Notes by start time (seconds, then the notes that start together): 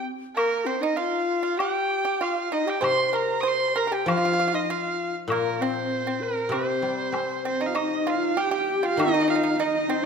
0.35 A#3 A#4, high woodblock
0.65 C4 C5
0.81 D#4 D#5
0.97 F4 F5
1.43 F4
1.58 G4 G5, high woodblock
2.05 G4
2.21 F4 F5, high woodblock
2.52 D#4 D#5
2.66 G4 G5
2.81 C3 C5 C6, high woodblock
3.06 C5 C6
3.12 A#4 A#5
3.41 C5 D#6
3.48 C6
3.76 A#4 A#5
3.87 A#4
3.92 G4 G5
4.06 F3 F4 F5, high woodblock
4.17 F4
4.25 F4
4.33 F4
4.40 F4
4.48 F4
4.54 D#4 F4 D#5
4.69 F4 F5
5.28 A#2 A#3 A#4, high woodblock
5.60 C4 C5
6.06 C4
6.21 A#4
6.49 C3 C4 C5, high woodblock
6.53 C4
6.82 G3
7.12 C4, high woodblock, low woodblock
7.45 C4 C5
7.61 D#4 D#5
7.66 F4 F5
7.75 D#4 D#5, high woodblock
8.07 F4 F5
8.36 G4
8.41 G5
8.51 G4
8.56 G5
8.83 F4 F5
8.97 D#3 D#4 D#5, high woodblock
9.06 C4 D#4
9.13 D#4
9.21 D#4
9.28 D#4 F4 F5
9.35 D#4
9.43 D#4
9.53 F4
9.58 D#4 D#5
9.88 C4 C5
10.02 D#4